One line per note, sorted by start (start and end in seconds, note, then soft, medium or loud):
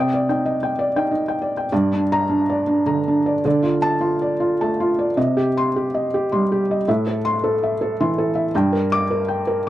0.00 1.66 C3 medium
0.00 0.14 D5 medium
0.00 0.25 G5 medium
0.00 1.66 D#6 soft
0.00 1.68 G6 soft
0.00 1.69 D7 soft
0.14 0.40 D5 medium
0.29 0.56 D#4 soft
0.29 0.56 G5 medium
0.45 0.71 D#5 medium
0.63 0.88 G5 medium
0.79 1.04 D5 medium
0.96 1.10 D#4 medium
0.96 1.20 G5 medium
1.11 1.35 D#4 medium
1.28 1.52 G5 medium
1.42 1.66 D5 medium
1.57 1.72 G5 soft
1.72 3.42 G2 medium
1.72 2.03 D5 medium
1.93 2.23 D4 medium
2.12 2.42 A#5 medium
2.30 2.60 D4 medium
2.50 2.80 D5 medium
2.67 2.98 D4 medium
2.86 3.33 D3 medium
2.86 3.17 A#5 medium
3.08 3.38 D4 medium
3.26 3.44 D5 medium
3.45 5.12 D3 medium
3.45 3.76 D5 medium
3.63 3.94 F4 medium
3.82 4.13 A5 medium
4.01 4.32 F4 medium
4.22 4.52 D5 medium
4.40 4.71 F4 medium
4.61 5.06 A3 medium
4.61 4.91 A5 medium
4.80 5.10 F4 medium
4.99 5.17 D5 medium
5.17 6.82 C3 medium
5.17 5.47 D#5 medium
5.37 5.67 G4 medium
5.57 5.87 C6 medium
5.76 6.05 G4 medium
5.94 6.24 D#5 medium
6.14 6.43 G4 medium
6.32 6.76 G3 soft
6.32 6.61 C6 medium
6.52 6.80 G4 medium
6.71 6.88 D#5 medium
6.88 8.49 A2 medium
6.88 7.17 E5 medium
7.07 7.36 A4 medium
7.25 7.54 C6 medium
7.44 7.72 A4 medium
7.63 7.91 E5 medium
7.81 8.09 A4 medium
8.00 8.43 E3 medium
8.00 8.28 C6 medium
8.18 8.46 A4 medium
8.35 8.53 E5 medium
8.55 9.69 G2 medium
8.55 8.84 G5 medium
8.72 9.02 A#4 medium
8.92 9.21 D6 medium
9.10 9.39 A#4 medium
9.28 9.58 G5 medium
9.47 9.69 A#4 medium